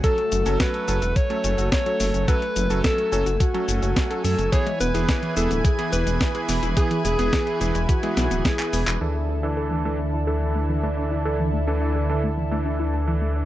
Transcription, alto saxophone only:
\new Staff \with { instrumentName = "Alto saxophone" } { \time 4/4 \key d \lydian \tempo 4 = 107 a'4 b'4 cis''4 cis''4 | b'4 a'4 fis'4. a'8 | cis''8 b'4 a'8 gis'8 b'4 r8 | gis'8 gis'4 e'8 fis'4 gis'8. r16 |
r1 | r1 | }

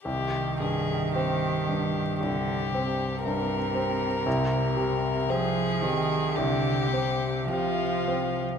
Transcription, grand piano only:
\new Staff \with { instrumentName = "Grand piano" } { \clef bass \time 4/4 \key c \minor \tempo 4 = 57 c,8 g,8 c'8 g,8 c,8 c'8 g,8 c'8 | c,8 c8 c'8 c8 c,8 c'8 c8 c'8 | }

